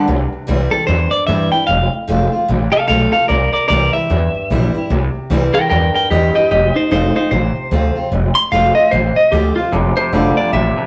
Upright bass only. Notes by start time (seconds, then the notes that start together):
0.08 C2
0.33 muted upright bass stroke
0.49 C2
0.88 E2
1.13 muted upright bass stroke
1.29 G2
1.53 muted upright bass stroke
1.69 F1
1.93 muted upright bass stroke
2.09 F1
2.33 muted upright bass stroke
2.49 A1
2.74 muted upright bass stroke
2.89 B1
3.30 C2
3.54 muted upright bass stroke
3.70 C2
3.95 muted upright bass stroke
4.10 E2
4.34 muted upright bass stroke
4.50 A#1
4.75 muted upright bass stroke
4.90 C2
5.15 muted upright bass stroke
5.30 C2
5.55 muted upright bass stroke
5.71 E2
5.95 muted upright bass stroke
6.11 E2
6.36 muted upright bass stroke
6.51 F1
6.76 muted upright bass stroke
6.91 F1
7.16 muted upright bass stroke
7.32 A1
7.56 muted upright bass stroke
7.71 D2
8.11 F1
8.36 muted upright bass stroke
8.52 F1
8.93 A1
9.17 muted upright bass stroke
9.32 D2
9.57 muted upright bass stroke
9.72 F1
9.97 muted upright bass stroke
10.12 F1
10.37 muted upright bass stroke
10.53 A1
10.77 muted upright bass stroke